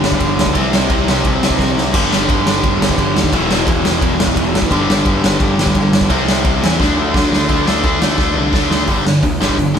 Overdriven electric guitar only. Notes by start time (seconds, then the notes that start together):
Already playing: G2 D3 G3
0.54 C3 G3 C4
1.93 G2 D3 G3
3.33 E2 B2 E3
4.70 G2 D3 G3
6.09 C3 G3 C4
6.80 D3 A3 D4
7.49 D3 A3 D4
7.66 D3 A3 D4
7.84 D3 A3 D4
8.02 D3 A3 D4
8.18 D3 A3 D4
8.36 D3 A3 D4
8.53 D3 A3 D4
8.70 D3 A3 D4
8.88 G2 D3 G3
9.06 G2 D3
9.23 G2 D3
9.40 G2 D3 G3
9.57 G2 D3
9.74 G2 D3